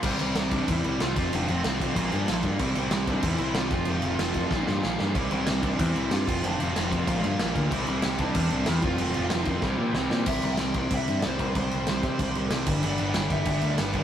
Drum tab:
CC |xxxxxxxx|xxxxxxxx|xxxxxxxx|xxxx----|
SD |--o---o-|--o---o-|--o---o-|--o-oooo|
BD |o--oo--o|---oo--o|o--oo--o|---oo---|

CC |xxxxxxxx|xxxxxxxx|xxxxxxxx|xxxx----|
SD |--o---o-|--o---o-|--o---o-|--o-o-oo|
BD |o--oo--o|---oo--o|o--oo--o|---oo---|

CC |xxxxxxxx|xxxxxxxx|xxxxxxxx|
SD |--o---o-|--o---o-|--o---o-|
BD |o--oo--o|o--oo--o|---oo--o|